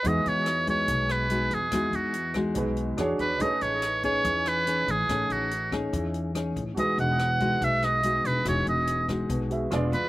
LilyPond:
<<
  \new Staff \with { instrumentName = "Oboe" } { \time 4/4 \key e \major \tempo 4 = 143 dis''8 cis''4 cis''4 b'4 gis'8~ | gis'8 fis'4 r2 b'8 | dis''8 cis''4 cis''4 b'4 gis'8~ | gis'8 fis'4 r2 r8 |
dis''8 fis''4. e''8 dis''4 b'8 | cis''8 dis''4 r2 b'8 | }
  \new Staff \with { instrumentName = "Grand piano" } { \time 4/4 \key e \major <dis' fis' gis' b'>1~ | <dis' fis' gis' b'>2 <dis' fis' gis' b'>4 <d' fis' gis' cis''>4 | <dis' gis' b' cis''>1~ | <dis' gis' b' cis''>1 |
<fis' gis' b' dis''>1~ | <fis' gis' b' dis''>2~ <fis' gis' b' dis''>8 <fis' gis' b' e''>8 <f' gis' b' d''>4 | }
  \new Staff \with { instrumentName = "Nylon-string guitar" } { \time 4/4 \key e \major << { <gis dis' fis'>4 r8 <gis dis' fis'>4. <gis dis' fis'>8 r8 | <gis dis' fis'>4 r8 <gis dis' fis'>4. <d' gis' cis''>8 r8 | <cis' dis' gis'>4 r8 <cis' dis' gis'>4. <cis' dis' gis'>8 r8 | <cis' dis' gis'>4 r8 <cis' dis' gis'>4. <cis' dis' gis'>8 r8 |
<gis dis' fis'>4 r8 <gis dis' fis'>4. <gis dis' fis'>4 | <gis dis' fis'>4. <gis dis' fis'>4. <gis d' f'>8 r8 | } \\ { e2 b,2 | e2 b,4 r4 | a2 e2 | a2 e2 |
e2 b,2 | e2 b,4 r4 | } >> }
  \new Staff \with { instrumentName = "Upright bass" } { \clef bass \time 4/4 \key e \major e,8 e,4. b,,4. e,8 | e,8 e,4. b,,4 e,8 e,8 | a,,8 a,,4. e,4. a,,8 | a,,8 a,,4. e,4. a,,8 |
e,,8 e,,4. b,,4. e,,8 | e,,8 e,,4. b,,4 e,,8 e,8 | }
  \new DrumStaff \with { instrumentName = "Drums" } \drummode { \time 4/4 <hh bd>8 hh8 <hh ss>8 <hh bd>8 <hh bd>8 <hh ss>8 hh8 hh8 | <hh bd ss>8 hh8 hh8 <hh bd ss>8 <hh bd>8 hh8 <hh ss>8 hh8 | <hh bd>8 hh8 <hh ss>8 <hh bd>8 <hh bd>8 <hh ss>8 hh8 hh8 | <hh bd ss>8 hh8 hh8 <hh bd ss>8 <hh bd>8 hh8 <hh ss>8 <hh bd>8 |
<hh bd>8 hh8 <hh ss>8 <hh bd>8 <hh bd>8 <hh ss>8 hh8 hh8 | <hh bd ss>8 hh8 hh8 <hh bd ss>8 <hh bd>8 hh8 <hh ss>8 hh8 | }
>>